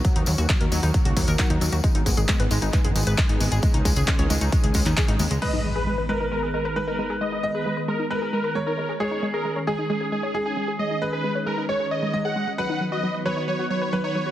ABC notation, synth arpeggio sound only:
X:1
M:4/4
L:1/16
Q:1/4=134
K:G#m
V:1 name="Synth arpeggio sound" clef=bass
F, D F, F F, A F, D F, F F, A F, D F, F | G, D G, G G, B G, D G, G G, B G, D G, G | G, D G, G G, c G, D G, G G, D G D G, G, | G, D G, G G, B G, D G, G G, B G, D G, G |
G, D G, G G, B G, D G, G G, B G, D G, G | G, D G, G G, c G, D G, G G, c G, D G, G | G, D G, G G, c G, D G, G c G, G, G G, G, | F, D F, F F, B F, D F, F F, B F, D F, F |]